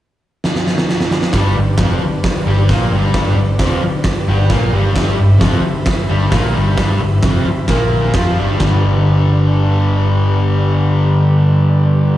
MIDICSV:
0, 0, Header, 1, 7, 480
1, 0, Start_track
1, 0, Key_signature, 1, "major"
1, 0, Tempo, 453515
1, 1417, Time_signature, 4, 2, 24, 8
1, 12886, End_track
2, 0, Start_track
2, 0, Title_t, "Transistor combo organ"
2, 0, Program_c, 0, 18
2, 1414, Note_on_c, 0, 67, 75
2, 1420, Note_on_c, 0, 71, 70
2, 1424, Note_on_c, 0, 74, 82
2, 4536, Note_on_c, 0, 78, 75
2, 4754, Note_off_c, 0, 78, 0
2, 4781, Note_on_c, 0, 79, 69
2, 4997, Note_off_c, 0, 79, 0
2, 5004, Note_on_c, 0, 83, 71
2, 5202, Note_off_c, 0, 67, 0
2, 5206, Note_off_c, 0, 71, 0
2, 5207, Note_off_c, 0, 74, 0
2, 5228, Note_off_c, 0, 83, 0
2, 5238, Note_on_c, 0, 67, 77
2, 5265, Note_on_c, 0, 76, 91
2, 5267, Note_on_c, 0, 83, 76
2, 9061, Note_off_c, 0, 67, 0
2, 9074, Note_off_c, 0, 76, 0
2, 9075, Note_off_c, 0, 83, 0
2, 9118, Note_on_c, 0, 74, 91
2, 9121, Note_on_c, 0, 67, 79
2, 9133, Note_on_c, 0, 71, 73
2, 12882, Note_off_c, 0, 74, 0
2, 12885, Note_off_c, 0, 67, 0
2, 12886, Note_off_c, 0, 71, 0
2, 12886, End_track
3, 0, Start_track
3, 0, Title_t, "Distorted electric guitar"
3, 0, Program_c, 1, 30
3, 1420, Note_on_c, 1, 43, 79
3, 1429, Note_on_c, 1, 55, 100
3, 1649, Note_off_c, 1, 43, 0
3, 1654, Note_off_c, 1, 55, 0
3, 1661, Note_on_c, 1, 43, 73
3, 1849, Note_off_c, 1, 43, 0
3, 1895, Note_on_c, 1, 41, 100
3, 1901, Note_on_c, 1, 53, 97
3, 2126, Note_off_c, 1, 41, 0
3, 2128, Note_off_c, 1, 53, 0
3, 2607, Note_on_c, 1, 43, 93
3, 2621, Note_on_c, 1, 55, 107
3, 2840, Note_off_c, 1, 43, 0
3, 2847, Note_off_c, 1, 55, 0
3, 2850, Note_on_c, 1, 46, 86
3, 2860, Note_on_c, 1, 58, 98
3, 3081, Note_off_c, 1, 46, 0
3, 3086, Note_off_c, 1, 58, 0
3, 3099, Note_on_c, 1, 43, 87
3, 3105, Note_on_c, 1, 55, 104
3, 3325, Note_off_c, 1, 43, 0
3, 3328, Note_off_c, 1, 55, 0
3, 3337, Note_on_c, 1, 43, 88
3, 3352, Note_on_c, 1, 55, 103
3, 3557, Note_off_c, 1, 43, 0
3, 3570, Note_on_c, 1, 43, 74
3, 3571, Note_off_c, 1, 55, 0
3, 3759, Note_off_c, 1, 43, 0
3, 3807, Note_on_c, 1, 41, 95
3, 3815, Note_on_c, 1, 53, 108
3, 4038, Note_off_c, 1, 41, 0
3, 4043, Note_off_c, 1, 53, 0
3, 4521, Note_on_c, 1, 43, 102
3, 4534, Note_on_c, 1, 55, 113
3, 4756, Note_off_c, 1, 43, 0
3, 4758, Note_on_c, 1, 46, 97
3, 4762, Note_off_c, 1, 55, 0
3, 4771, Note_on_c, 1, 58, 122
3, 4994, Note_on_c, 1, 43, 90
3, 4995, Note_off_c, 1, 46, 0
3, 5001, Note_off_c, 1, 58, 0
3, 5008, Note_on_c, 1, 55, 104
3, 5216, Note_off_c, 1, 43, 0
3, 5224, Note_off_c, 1, 55, 0
3, 5229, Note_on_c, 1, 43, 90
3, 5237, Note_on_c, 1, 55, 95
3, 5462, Note_off_c, 1, 43, 0
3, 5475, Note_off_c, 1, 55, 0
3, 5475, Note_on_c, 1, 43, 80
3, 5674, Note_off_c, 1, 43, 0
3, 5699, Note_on_c, 1, 41, 92
3, 5713, Note_on_c, 1, 53, 101
3, 5947, Note_off_c, 1, 41, 0
3, 5954, Note_off_c, 1, 53, 0
3, 6440, Note_on_c, 1, 43, 97
3, 6450, Note_on_c, 1, 55, 106
3, 6675, Note_on_c, 1, 46, 101
3, 6680, Note_off_c, 1, 43, 0
3, 6685, Note_off_c, 1, 55, 0
3, 6690, Note_on_c, 1, 58, 103
3, 6918, Note_off_c, 1, 46, 0
3, 6922, Note_on_c, 1, 43, 91
3, 6926, Note_off_c, 1, 58, 0
3, 6933, Note_on_c, 1, 55, 103
3, 7149, Note_off_c, 1, 43, 0
3, 7158, Note_off_c, 1, 55, 0
3, 7161, Note_on_c, 1, 43, 89
3, 7171, Note_on_c, 1, 55, 101
3, 7403, Note_off_c, 1, 43, 0
3, 7408, Note_off_c, 1, 55, 0
3, 7419, Note_on_c, 1, 43, 73
3, 7611, Note_off_c, 1, 43, 0
3, 7650, Note_on_c, 1, 41, 84
3, 7662, Note_on_c, 1, 53, 105
3, 7889, Note_off_c, 1, 41, 0
3, 7895, Note_off_c, 1, 53, 0
3, 8134, Note_on_c, 1, 46, 89
3, 8146, Note_on_c, 1, 58, 103
3, 8603, Note_off_c, 1, 46, 0
3, 8607, Note_on_c, 1, 53, 94
3, 8620, Note_off_c, 1, 58, 0
3, 8625, Note_on_c, 1, 65, 111
3, 8850, Note_off_c, 1, 53, 0
3, 8859, Note_off_c, 1, 65, 0
3, 8868, Note_on_c, 1, 43, 91
3, 8882, Note_on_c, 1, 55, 104
3, 9075, Note_off_c, 1, 43, 0
3, 9088, Note_on_c, 1, 43, 89
3, 9108, Note_off_c, 1, 55, 0
3, 9114, Note_on_c, 1, 50, 90
3, 9132, Note_on_c, 1, 55, 100
3, 12886, Note_off_c, 1, 43, 0
3, 12886, Note_off_c, 1, 50, 0
3, 12886, Note_off_c, 1, 55, 0
3, 12886, End_track
4, 0, Start_track
4, 0, Title_t, "Fingered electric bass"
4, 0, Program_c, 2, 33
4, 1424, Note_on_c, 2, 31, 102
4, 1642, Note_off_c, 2, 31, 0
4, 1676, Note_on_c, 2, 31, 86
4, 1885, Note_off_c, 2, 31, 0
4, 1892, Note_on_c, 2, 29, 96
4, 2114, Note_off_c, 2, 29, 0
4, 2609, Note_on_c, 2, 31, 98
4, 2831, Note_off_c, 2, 31, 0
4, 2849, Note_on_c, 2, 34, 96
4, 3071, Note_off_c, 2, 34, 0
4, 3089, Note_on_c, 2, 31, 99
4, 3310, Note_off_c, 2, 31, 0
4, 3328, Note_on_c, 2, 31, 91
4, 3547, Note_off_c, 2, 31, 0
4, 3553, Note_on_c, 2, 31, 83
4, 3782, Note_off_c, 2, 31, 0
4, 3805, Note_on_c, 2, 29, 95
4, 4028, Note_off_c, 2, 29, 0
4, 4521, Note_on_c, 2, 31, 96
4, 4746, Note_off_c, 2, 31, 0
4, 4766, Note_on_c, 2, 34, 97
4, 4989, Note_off_c, 2, 34, 0
4, 5003, Note_on_c, 2, 31, 97
4, 5228, Note_off_c, 2, 31, 0
4, 5253, Note_on_c, 2, 31, 100
4, 5474, Note_off_c, 2, 31, 0
4, 5496, Note_on_c, 2, 31, 91
4, 5716, Note_off_c, 2, 31, 0
4, 5737, Note_on_c, 2, 29, 101
4, 5957, Note_off_c, 2, 29, 0
4, 6460, Note_on_c, 2, 31, 96
4, 6680, Note_off_c, 2, 31, 0
4, 6698, Note_on_c, 2, 34, 104
4, 6920, Note_off_c, 2, 34, 0
4, 6949, Note_on_c, 2, 31, 87
4, 7166, Note_off_c, 2, 31, 0
4, 7178, Note_on_c, 2, 31, 104
4, 7402, Note_off_c, 2, 31, 0
4, 7439, Note_on_c, 2, 31, 82
4, 7654, Note_off_c, 2, 31, 0
4, 7658, Note_on_c, 2, 29, 99
4, 7883, Note_off_c, 2, 29, 0
4, 8144, Note_on_c, 2, 34, 102
4, 8592, Note_off_c, 2, 34, 0
4, 8618, Note_on_c, 2, 41, 103
4, 8846, Note_off_c, 2, 41, 0
4, 8885, Note_on_c, 2, 31, 94
4, 9101, Note_off_c, 2, 31, 0
4, 9109, Note_on_c, 2, 31, 99
4, 12873, Note_off_c, 2, 31, 0
4, 12886, End_track
5, 0, Start_track
5, 0, Title_t, "Muted distorted electric guitar strokes"
5, 2135, Note_on_c, 9, 29, 58
5, 2241, Note_off_c, 9, 29, 0
5, 2374, Note_on_c, 9, 29, 55
5, 2480, Note_off_c, 9, 29, 0
5, 4048, Note_on_c, 9, 29, 60
5, 4154, Note_off_c, 9, 29, 0
5, 4285, Note_on_c, 9, 29, 56
5, 4391, Note_off_c, 9, 29, 0
5, 5955, Note_on_c, 9, 29, 60
5, 6060, Note_off_c, 9, 29, 0
5, 6201, Note_on_c, 9, 29, 63
5, 6307, Note_off_c, 9, 29, 0
5, 7896, Note_on_c, 9, 29, 61
5, 8002, Note_off_c, 9, 29, 0
5, 12886, End_track
6, 0, Start_track
6, 0, Title_t, "Muted fingered electric bass strokes"
6, 2145, Note_on_c, 9, 29, 40
6, 2250, Note_off_c, 9, 29, 0
6, 2375, Note_on_c, 9, 29, 46
6, 2481, Note_off_c, 9, 29, 0
6, 4036, Note_on_c, 9, 29, 42
6, 4142, Note_off_c, 9, 29, 0
6, 4286, Note_on_c, 9, 29, 45
6, 4392, Note_off_c, 9, 29, 0
6, 5981, Note_on_c, 9, 29, 40
6, 6087, Note_off_c, 9, 29, 0
6, 6211, Note_on_c, 9, 29, 49
6, 6317, Note_off_c, 9, 29, 0
6, 7927, Note_on_c, 9, 29, 45
6, 8033, Note_off_c, 9, 29, 0
6, 12886, End_track
7, 0, Start_track
7, 0, Title_t, "Drums"
7, 465, Note_on_c, 9, 38, 74
7, 571, Note_off_c, 9, 38, 0
7, 588, Note_on_c, 9, 38, 71
7, 694, Note_off_c, 9, 38, 0
7, 707, Note_on_c, 9, 38, 77
7, 813, Note_off_c, 9, 38, 0
7, 826, Note_on_c, 9, 38, 94
7, 931, Note_off_c, 9, 38, 0
7, 943, Note_on_c, 9, 38, 85
7, 1049, Note_off_c, 9, 38, 0
7, 1064, Note_on_c, 9, 38, 93
7, 1170, Note_off_c, 9, 38, 0
7, 1175, Note_on_c, 9, 38, 99
7, 1280, Note_off_c, 9, 38, 0
7, 1293, Note_on_c, 9, 38, 98
7, 1398, Note_off_c, 9, 38, 0
7, 1406, Note_on_c, 9, 46, 58
7, 1407, Note_on_c, 9, 38, 111
7, 1416, Note_on_c, 9, 36, 107
7, 1512, Note_off_c, 9, 46, 0
7, 1513, Note_off_c, 9, 38, 0
7, 1521, Note_off_c, 9, 36, 0
7, 1879, Note_on_c, 9, 46, 65
7, 1880, Note_on_c, 9, 38, 126
7, 1892, Note_on_c, 9, 36, 118
7, 1985, Note_off_c, 9, 46, 0
7, 1986, Note_off_c, 9, 38, 0
7, 1998, Note_off_c, 9, 36, 0
7, 2369, Note_on_c, 9, 46, 64
7, 2370, Note_on_c, 9, 38, 121
7, 2371, Note_on_c, 9, 36, 110
7, 2475, Note_off_c, 9, 46, 0
7, 2476, Note_off_c, 9, 38, 0
7, 2477, Note_off_c, 9, 36, 0
7, 2848, Note_on_c, 9, 46, 62
7, 2849, Note_on_c, 9, 36, 109
7, 2849, Note_on_c, 9, 38, 104
7, 2954, Note_off_c, 9, 46, 0
7, 2955, Note_off_c, 9, 36, 0
7, 2955, Note_off_c, 9, 38, 0
7, 3324, Note_on_c, 9, 46, 62
7, 3325, Note_on_c, 9, 36, 116
7, 3325, Note_on_c, 9, 38, 120
7, 3430, Note_off_c, 9, 46, 0
7, 3431, Note_off_c, 9, 36, 0
7, 3431, Note_off_c, 9, 38, 0
7, 3800, Note_on_c, 9, 46, 62
7, 3801, Note_on_c, 9, 38, 115
7, 3806, Note_on_c, 9, 36, 109
7, 3906, Note_off_c, 9, 46, 0
7, 3907, Note_off_c, 9, 38, 0
7, 3911, Note_off_c, 9, 36, 0
7, 4274, Note_on_c, 9, 46, 57
7, 4275, Note_on_c, 9, 38, 112
7, 4282, Note_on_c, 9, 36, 108
7, 4380, Note_off_c, 9, 46, 0
7, 4381, Note_off_c, 9, 38, 0
7, 4388, Note_off_c, 9, 36, 0
7, 4760, Note_on_c, 9, 46, 58
7, 4761, Note_on_c, 9, 38, 103
7, 4762, Note_on_c, 9, 36, 106
7, 4865, Note_off_c, 9, 46, 0
7, 4867, Note_off_c, 9, 38, 0
7, 4868, Note_off_c, 9, 36, 0
7, 5245, Note_on_c, 9, 36, 109
7, 5251, Note_on_c, 9, 46, 63
7, 5252, Note_on_c, 9, 38, 118
7, 5351, Note_off_c, 9, 36, 0
7, 5357, Note_off_c, 9, 46, 0
7, 5358, Note_off_c, 9, 38, 0
7, 5724, Note_on_c, 9, 46, 63
7, 5725, Note_on_c, 9, 38, 107
7, 5726, Note_on_c, 9, 36, 111
7, 5830, Note_off_c, 9, 46, 0
7, 5831, Note_off_c, 9, 38, 0
7, 5832, Note_off_c, 9, 36, 0
7, 6199, Note_on_c, 9, 46, 60
7, 6200, Note_on_c, 9, 38, 111
7, 6207, Note_on_c, 9, 36, 116
7, 6304, Note_off_c, 9, 46, 0
7, 6306, Note_off_c, 9, 38, 0
7, 6313, Note_off_c, 9, 36, 0
7, 6686, Note_on_c, 9, 46, 67
7, 6687, Note_on_c, 9, 38, 105
7, 6689, Note_on_c, 9, 36, 110
7, 6792, Note_off_c, 9, 46, 0
7, 6793, Note_off_c, 9, 38, 0
7, 6795, Note_off_c, 9, 36, 0
7, 7170, Note_on_c, 9, 46, 64
7, 7171, Note_on_c, 9, 38, 108
7, 7172, Note_on_c, 9, 36, 125
7, 7276, Note_off_c, 9, 46, 0
7, 7277, Note_off_c, 9, 38, 0
7, 7278, Note_off_c, 9, 36, 0
7, 7647, Note_on_c, 9, 46, 64
7, 7648, Note_on_c, 9, 38, 115
7, 7654, Note_on_c, 9, 36, 119
7, 7753, Note_off_c, 9, 46, 0
7, 7754, Note_off_c, 9, 38, 0
7, 7760, Note_off_c, 9, 36, 0
7, 8127, Note_on_c, 9, 46, 60
7, 8128, Note_on_c, 9, 38, 120
7, 8138, Note_on_c, 9, 36, 110
7, 8233, Note_off_c, 9, 46, 0
7, 8234, Note_off_c, 9, 38, 0
7, 8244, Note_off_c, 9, 36, 0
7, 8612, Note_on_c, 9, 46, 54
7, 8613, Note_on_c, 9, 38, 110
7, 8622, Note_on_c, 9, 36, 105
7, 8718, Note_off_c, 9, 46, 0
7, 8719, Note_off_c, 9, 38, 0
7, 8728, Note_off_c, 9, 36, 0
7, 9101, Note_on_c, 9, 38, 109
7, 9106, Note_on_c, 9, 36, 101
7, 9207, Note_off_c, 9, 38, 0
7, 9212, Note_off_c, 9, 36, 0
7, 12886, End_track
0, 0, End_of_file